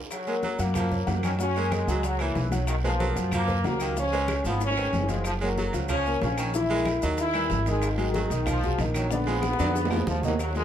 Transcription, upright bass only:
0.59 1.04 F#2 medium
1.07 1.82 F#2 medium
1.87 2.32 C#2 medium
2.36 3.11 B1 medium
3.16 3.61 F#2 medium
3.65 4.39 C#2 medium
4.44 4.89 G#1 medium
4.93 5.68 F#1 medium
5.74 6.18 C#2 medium
6.22 6.97 A#1 medium
7.03 7.48 D#2 medium
7.51 8.25 G#1 medium
8.30 8.75 B1 medium
8.78 9.53 A#1 loud
9.60 10.04 F2 medium
10.07 10.64 D#2 loud

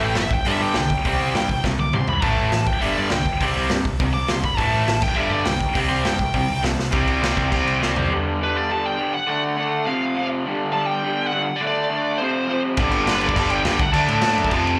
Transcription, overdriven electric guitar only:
0.00 0.15 A2 medium
0.00 0.16 E3 loud
0.00 0.16 A3 loud
0.17 0.30 A2 medium
0.17 0.30 E3 medium
0.45 0.74 G2 medium
0.45 0.75 D3 loud
0.45 0.75 G3 loud
0.75 0.89 G2 medium
0.75 0.89 D3 medium
1.06 1.34 C3 loud
1.06 1.34 G3 loud
1.06 1.34 C4 loud
1.35 1.48 C3 medium
1.35 1.48 G3 medium
1.64 1.78 C3 medium
1.64 1.77 G3 medium
1.94 2.07 C3 medium
1.94 2.07 G3 medium
2.23 2.51 A2 loud
2.23 2.52 E3 loud
2.23 2.52 A3 loud
2.53 2.66 A2 medium
2.53 2.66 E3 medium
2.82 3.11 G2 medium
2.82 3.11 D3 loud
2.82 3.11 G3 loud
3.12 3.25 G2 medium
3.12 3.25 D3 medium
3.41 3.70 C3 medium
3.41 3.70 G3 loud
3.41 3.70 C4 loud
3.72 3.84 C3 medium
3.72 3.84 G3 medium
4.01 4.14 C3 medium
4.01 4.14 G3 loud
4.30 4.43 C3 medium
4.30 4.43 G3 medium
4.60 4.87 A2 loud
4.60 4.87 E3 loud
4.60 4.88 A3 loud
4.88 5.01 A2 medium
4.88 5.01 E3 medium
5.16 5.45 G2 loud
5.16 5.45 D3 loud
5.16 5.45 G3 loud
5.46 5.60 G2 medium
5.46 5.60 D3 medium
5.74 6.03 C3 loud
5.74 6.04 G3 loud
5.74 6.04 C4 loud
6.05 6.19 C3 medium
6.05 6.19 G3 medium
6.35 6.48 C3 medium
6.35 6.48 G3 loud
6.63 6.77 C3 medium
6.63 6.77 G3 medium
6.92 7.21 C3 loud
6.92 7.20 G3 loud
6.92 7.20 C4 loud
7.21 7.49 C3 medium
7.21 7.49 G3 medium
7.21 7.50 C4 loud
7.50 7.80 C3 loud
7.50 7.80 G3 loud
7.50 7.79 C4 loud
7.80 8.10 C3 medium
7.80 8.10 G3 medium
7.80 8.09 C4 medium
8.10 8.41 G2 loud
8.10 8.40 D3 loud
8.10 8.40 G3 loud
8.41 8.68 G2 medium
8.41 8.68 D3 medium
8.41 8.69 G3 medium
8.69 8.97 G2 loud
8.69 8.97 D3 loud
8.69 8.97 G3 loud
8.98 9.12 G2 medium
8.98 9.12 D3 medium
8.98 9.12 G3 medium
9.27 9.57 D3 loud
9.27 9.56 A3 loud
9.27 9.56 D4 loud
9.57 9.86 D3 medium
9.57 9.86 A3 medium
9.57 9.85 D4 medium
9.87 10.15 F2 loud
9.87 10.15 C3 loud
9.87 10.14 F3 loud
10.15 10.44 F2 medium
10.15 10.44 C3 medium
10.15 10.44 F3 medium
10.45 10.74 G2 loud
10.45 10.73 D3 loud
10.45 10.72 G3 loud
10.73 11.02 G2 medium
10.73 11.03 D3 medium
10.73 11.03 G3 loud
11.03 11.31 G2 loud
11.03 11.31 D3 loud
11.03 11.30 G3 loud
11.32 11.46 G2 medium
11.32 11.46 D3 medium
11.32 11.46 G3 medium
11.61 11.90 D3 loud
11.61 11.89 A3 loud
11.61 11.88 D4 loud
11.90 12.19 D3 medium
11.90 12.18 A3 medium
11.90 12.18 D4 loud
12.20 12.48 F2 loud
12.20 12.47 C3 loud
12.20 12.47 F3 loud
12.48 12.77 F2 medium
12.48 12.77 C3 medium
12.48 12.77 F3 loud
12.79 13.07 G2 loud
12.79 13.07 D3 loud
12.79 13.06 G3 loud
13.08 13.34 G2 medium
13.08 13.34 D3 medium
13.08 13.35 G3 loud
13.35 13.64 G2 loud
13.35 13.64 D3 loud
13.35 13.64 G3 loud
13.65 13.79 G2 medium
13.65 13.79 D3 medium
13.65 13.79 G3 medium
13.93 14.23 D3 loud
13.93 14.23 A3 loud
13.93 14.22 D4 loud
14.23 14.52 D3 medium
14.23 14.52 A3 medium
14.23 14.51 D4 medium
14.52 14.79 F2 loud
14.52 14.79 C3 loud
14.52 14.79 F3 loud

